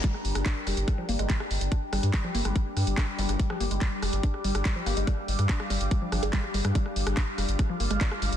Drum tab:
HH |x-oxx-oxx-oxx-ox|x-oxx-oxx-oxx-ox|x-oxx-oxx-oxx-ox|x-oxx-oxx-oxx-ox|
CP |----x-------x---|----x-------x---|----x-------x---|----x-------x---|
SD |-r-r--r-r--r-r--|r-r--r-r--r-r--r|-r--r-r--r-r--r-|r--r-r--r-r--r-r|
BD |o---o---o---o---|o---o---o---o---|o---o---o---o---|o---o---o---o---|

HH |x-oxx-oxx-oxx-ox|
CP |----x-------x---|
SD |-r-r--r-r--r-r--|
BD |o---o---o---o---|